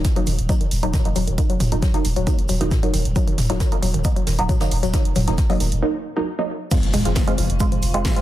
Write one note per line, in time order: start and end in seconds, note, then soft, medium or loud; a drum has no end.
0.04 kick loud
0.04 snare loud
0.04 closed hi-hat medium
0.04 shaker medium
0.16 0.21 F#3 loud
0.16 0.27 F#3 loud
0.16 0.27 A#3 medium
0.16 0.27 D#4 loud
0.16 closed hi-hat medium
0.27 0.38 D#1 loud
0.27 0.32 D#3 medium
0.27 open hi-hat loud
0.27 shaker medium
0.39 0.49 D#1 medium
0.39 closed hi-hat soft
0.49 0.54 F#3 loud
0.49 0.67 F#3 medium
0.49 0.67 A#3 medium
0.49 0.67 D#4 medium
0.49 kick loud
0.49 closed hi-hat medium
0.49 shaker medium
0.61 0.66 D#3 medium
0.61 closed hi-hat soft
0.71 0.82 D#1 loud
0.71 open hi-hat loud
0.71 shaker medium
0.83 0.93 D#1 medium
0.83 0.88 F#3 loud
0.83 0.93 F#3 medium
0.83 0.93 A#3 medium
0.83 0.93 D#4 loud
0.83 closed hi-hat soft
0.94 0.99 D#3 medium
0.94 kick loud
0.94 snare loud
0.94 closed hi-hat medium
0.94 mid tom medium
0.94 shaker loud
1.05 1.16 F#3 medium
1.05 1.16 A#3 medium
1.05 1.16 D#4 medium
1.05 closed hi-hat soft
1.16 1.27 D#1 loud
1.16 1.21 F#3 loud
1.16 open hi-hat loud
1.16 shaker medium
1.27 1.38 D#1 medium
1.27 1.32 D#3 medium
1.27 closed hi-hat medium
1.38 1.69 F#3 medium
1.38 1.69 A#3 medium
1.38 1.69 D#4 medium
1.38 kick loud
1.38 closed hi-hat medium
1.38 shaker medium
1.50 1.55 F#3 loud
1.50 closed hi-hat soft
1.60 1.71 D#1 loud
1.60 1.66 D#3 medium
1.60 mid tom loud
1.60 open hi-hat loud
1.60 shaker medium
1.72 1.82 D#1 medium
1.72 1.82 F#3 medium
1.72 1.82 A#3 medium
1.72 1.82 D#4 medium
1.72 closed hi-hat medium
1.82 1.88 F#3 loud
1.82 kick loud
1.82 snare loud
1.82 closed hi-hat medium
1.82 shaker medium
1.94 1.99 D#3 medium
1.94 2.04 F#3 loud
1.94 2.04 A#3 medium
1.94 2.04 D#4 loud
1.94 closed hi-hat soft
2.05 2.16 D#1 loud
2.05 open hi-hat loud
2.05 shaker medium
2.16 2.27 D#1 medium
2.16 2.21 F#3 loud
2.16 closed hi-hat soft
2.27 2.32 D#3 medium
2.27 2.45 F#3 medium
2.27 2.45 A#3 medium
2.27 2.45 D#4 loud
2.27 kick loud
2.27 closed hi-hat medium
2.27 shaker medium
2.39 closed hi-hat soft
2.48 2.60 D#1 medium
2.48 2.54 F#3 loud
2.48 open hi-hat loud
2.48 shaker medium
2.61 2.71 D#1 medium
2.61 2.66 D#3 medium
2.61 2.71 F#3 loud
2.61 2.71 A#3 medium
2.61 2.71 D#4 loud
2.61 snare soft
2.61 closed hi-hat medium
2.71 kick loud
2.71 snare loud
2.71 closed hi-hat medium
2.71 mid tom loud
2.71 shaker medium
2.83 2.88 F#3 loud
2.83 2.93 F#3 medium
2.83 2.93 A#3 medium
2.83 2.93 D#4 medium
2.83 closed hi-hat soft
2.94 3.05 D#1 loud
2.94 2.99 D#3 medium
2.94 open hi-hat loud
2.94 shaker medium
3.05 3.16 D#1 medium
3.05 closed hi-hat soft
3.16 3.21 F#3 loud
3.16 3.47 F#3 medium
3.16 3.47 A#3 medium
3.16 3.47 D#4 medium
3.16 kick loud
3.16 closed hi-hat medium
3.16 shaker medium
3.27 3.32 D#3 medium
3.27 closed hi-hat medium
3.27 closed hi-hat soft
3.38 3.49 D#1 medium
3.38 snare medium
3.38 mid tom medium
3.38 open hi-hat loud
3.38 shaker medium
3.50 3.60 D#1 medium
3.50 3.55 F#3 loud
3.50 3.60 F#3 medium
3.50 3.60 A#3 medium
3.50 3.60 D#4 medium
3.50 snare soft
3.50 closed hi-hat medium
3.60 3.66 D#3 medium
3.60 kick loud
3.60 snare loud
3.60 closed hi-hat medium
3.60 shaker medium
3.72 3.82 F#3 loud
3.72 3.82 A#3 medium
3.72 3.82 D#4 loud
3.72 closed hi-hat medium
3.82 3.94 D#1 loud
3.82 3.88 F#3 loud
3.82 open hi-hat loud
3.82 shaker medium
3.94 4.04 D#1 medium
3.94 3.99 D#3 medium
3.94 closed hi-hat soft
4.04 4.22 F#3 medium
4.04 4.22 A#3 medium
4.04 4.22 D#4 loud
4.04 kick loud
4.04 closed hi-hat medium
4.04 shaker medium
4.16 4.21 F#3 loud
4.16 closed hi-hat soft
4.27 4.38 D#1 loud
4.27 4.32 D#3 medium
4.27 snare loud
4.27 open hi-hat loud
4.27 shaker medium
4.39 4.49 D#1 medium
4.39 4.49 F#3 loud
4.39 4.49 A#3 medium
4.39 4.49 D#4 loud
4.39 closed hi-hat medium
4.39 closed hi-hat soft
4.49 4.54 F#3 loud
4.49 kick loud
4.49 closed hi-hat medium
4.49 mid tom medium
4.49 shaker medium
4.60 4.66 D#3 medium
4.60 4.71 F#3 medium
4.60 4.71 A#3 medium
4.60 4.71 D#4 loud
4.60 snare loud
4.60 closed hi-hat soft
4.60 shaker medium
4.71 4.83 D#1 loud
4.71 open hi-hat loud
4.83 4.93 D#1 medium
4.83 4.88 F#3 loud
4.83 closed hi-hat medium
4.83 shaker medium
4.94 4.99 D#3 medium
4.94 5.25 F#3 medium
4.94 5.25 A#3 medium
4.94 5.25 D#4 medium
4.94 kick loud
4.94 snare loud
4.94 closed hi-hat medium
4.94 shaker medium
5.05 closed hi-hat soft
5.05 closed hi-hat medium
5.15 5.27 D#1 loud
5.15 5.21 F#3 loud
5.15 snare soft
5.15 mid tom medium
5.15 open hi-hat loud
5.15 shaker medium
5.27 5.38 D#1 medium
5.27 5.32 D#3 medium
5.27 5.38 F#3 medium
5.27 5.38 A#3 medium
5.27 5.38 D#4 medium
5.27 snare soft
5.27 closed hi-hat medium
5.38 kick loud
5.38 snare medium
5.38 closed hi-hat loud
5.38 shaker medium
5.50 5.55 F#3 loud
5.50 5.60 F#3 loud
5.50 5.60 A#3 medium
5.50 5.60 D#4 loud
5.50 open hi-hat medium
5.60 5.71 D#1 medium
5.60 5.66 D#3 medium
5.60 open hi-hat loud
5.60 shaker medium
5.72 5.82 D#1 medium
5.72 closed hi-hat medium
5.82 6.00 F#3 medium
5.82 6.00 A#3 medium
5.82 6.00 D#4 loud
6.16 6.27 F#3 medium
6.16 6.27 A#3 medium
6.16 6.27 D#4 loud
6.39 6.49 F#3 medium
6.39 6.49 A#3 medium
6.39 6.49 D#4 loud
6.71 6.77 F3 medium
6.71 7.03 G#3 medium
6.71 7.03 C4 medium
6.71 7.03 F4 medium
6.71 8.21 F4 medium
6.71 kick loud
6.71 closed hi-hat medium
6.71 crash loud
6.71 impact medium
6.71 shaker medium
6.83 closed hi-hat medium
6.93 7.05 F1 loud
6.93 6.99 G#3 loud
6.93 snare medium
6.93 mid tom medium
6.93 open hi-hat loud
6.93 shaker medium
7.05 7.16 F1 medium
7.05 7.10 F3 medium
7.05 7.16 G#3 medium
7.05 7.16 C4 medium
7.05 7.16 F4 medium
7.05 snare medium
7.05 closed hi-hat medium
7.15 kick loud
7.15 snare loud
7.15 closed hi-hat loud
7.15 shaker medium
7.28 7.38 G#3 loud
7.28 7.32 G#3 loud
7.28 7.38 C4 medium
7.28 7.38 F4 loud
7.28 closed hi-hat medium
7.38 7.49 F1 loud
7.38 7.43 F3 medium
7.38 open hi-hat loud
7.38 shaker medium
7.50 7.60 F1 medium
7.50 closed hi-hat medium
7.60 7.78 G#3 medium
7.60 7.66 G#3 loud
7.60 7.78 C4 medium
7.60 7.78 F4 loud
7.60 kick loud
7.60 closed hi-hat medium
7.60 shaker loud
7.72 7.77 F3 medium
7.72 closed hi-hat medium
7.72 mid tom medium
7.82 7.94 F1 loud
7.82 open hi-hat loud
7.82 shaker medium
7.94 8.05 F1 medium
7.94 7.99 G#3 loud
7.94 8.04 G#3 loud
7.94 8.04 C4 medium
7.94 8.04 F4 loud
7.94 closed hi-hat soft
7.94 closed hi-hat medium
8.05 8.10 F3 medium
8.05 kick loud
8.05 snare loud
8.05 closed hi-hat medium
8.05 mid tom medium
8.05 shaker medium
8.16 8.21 G#3 medium
8.16 8.21 C4 medium
8.16 8.21 F4 loud
8.16 closed hi-hat medium
8.16 closed hi-hat soft